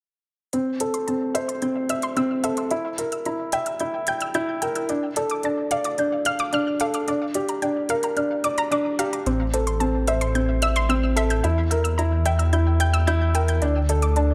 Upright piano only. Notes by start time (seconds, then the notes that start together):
0.54 C4
0.81 A4
1.08 C4
1.35 C5
1.62 C4
1.90 E5
2.17 C4
2.44 A4
2.71 E4
2.98 A#4
3.26 E4
3.53 E5
3.81 E4
4.08 G5
4.35 E4
4.63 A#4
4.90 D4
5.17 A4
5.44 D4
5.71 D5
5.98 D4
6.26 F5
6.53 D4
6.81 A4
7.08 D4
7.35 G4
7.62 D4
7.89 A#4
8.17 D4
8.44 D5
8.71 D4
8.99 G4
9.26 C4
9.53 A4
9.80 C4
10.08 C5
10.35 C4
10.62 E5
10.89 C4
11.16 A4
11.44 E4
11.72 A#4
11.99 E4
12.26 E5
12.53 E4
12.80 G5
13.08 E4
13.35 A#4
13.62 D4
13.89 A4
14.16 D4